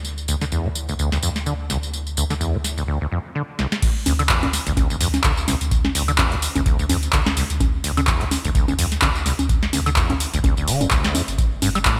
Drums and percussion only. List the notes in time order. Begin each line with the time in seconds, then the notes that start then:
0.05 tambourine
0.18 tambourine
0.28 tambourine
0.41 snare, tambourine
0.52 tambourine
0.75 tambourine
0.89 tambourine
0.99 tambourine
1.12 snare, tambourine
1.23 tambourine
1.36 snare, tambourine
1.46 tambourine
1.70 snare, tambourine
1.83 tambourine
1.93 tambourine
2.07 tambourine
2.17 tambourine
2.30 snare, tambourine
2.41 tambourine
2.64 snare, tambourine
2.78 tambourine
3.59 snare
3.72 snare
3.82 kick, closed hi-hat, tambourine, crash
4.06 open hi-hat, tambourine, high conga
4.19 closed hi-hat, tambourine, high woodblock
4.29 kick, clap, closed hi-hat, tambourine
4.43 closed hi-hat, high conga
4.53 snare, open hi-hat, tambourine
4.67 closed hi-hat, tambourine
4.77 kick, closed hi-hat, tambourine, high conga
4.90 tambourine
5.01 open hi-hat, tambourine
5.14 snare, closed hi-hat, tambourine, high conga
5.24 kick, clap, closed hi-hat, tambourine
5.37 tambourine
5.48 snare, open hi-hat, tambourine, high conga
5.61 closed hi-hat, tambourine
5.71 kick, closed hi-hat, tambourine
5.85 snare, high conga
5.95 open hi-hat, tambourine
6.08 closed hi-hat, tambourine, high woodblock
6.18 kick, clap, closed hi-hat, tambourine, high conga
6.32 closed hi-hat
6.42 open hi-hat, tambourine
6.55 closed hi-hat, tambourine, high conga
6.66 kick, closed hi-hat, tambourine
6.79 tambourine
6.89 open hi-hat, tambourine, high conga
7.03 closed hi-hat, tambourine
7.13 kick, clap, closed hi-hat, tambourine
7.26 snare, tambourine, high conga
7.37 open hi-hat, tambourine
7.50 closed hi-hat, tambourine
7.60 kick, closed hi-hat, tambourine, high conga
7.84 open hi-hat, tambourine
7.97 closed hi-hat, tambourine, high conga, high woodblock
8.07 kick, clap, closed hi-hat, tambourine
8.21 closed hi-hat
8.31 snare, open hi-hat, tambourine, high conga
8.45 closed hi-hat, tambourine
8.55 kick, closed hi-hat, tambourine
8.68 tambourine, high conga
8.79 open hi-hat, tambourine
8.92 snare, closed hi-hat, tambourine
9.02 kick, clap, closed hi-hat, tambourine, high conga
9.15 tambourine
9.26 snare, open hi-hat, tambourine
9.39 closed hi-hat, tambourine, high conga
9.49 kick, closed hi-hat, tambourine
9.63 snare
9.73 open hi-hat, tambourine, high conga
9.86 closed hi-hat, tambourine, high woodblock
9.96 kick, clap, closed hi-hat, tambourine
10.10 closed hi-hat, high conga
10.20 open hi-hat, tambourine
10.34 closed hi-hat, tambourine
10.44 kick, closed hi-hat, tambourine, high conga
10.57 tambourine
10.68 open hi-hat, tambourine
10.81 closed hi-hat, tambourine, high conga
10.91 kick, clap, closed hi-hat, tambourine
11.04 snare, tambourine
11.15 open hi-hat, tambourine, high conga
11.28 closed hi-hat, tambourine
11.38 kick, closed hi-hat, tambourine
11.62 open hi-hat, tambourine, high conga
11.75 closed hi-hat, tambourine, high woodblock
11.85 kick, clap, closed hi-hat, tambourine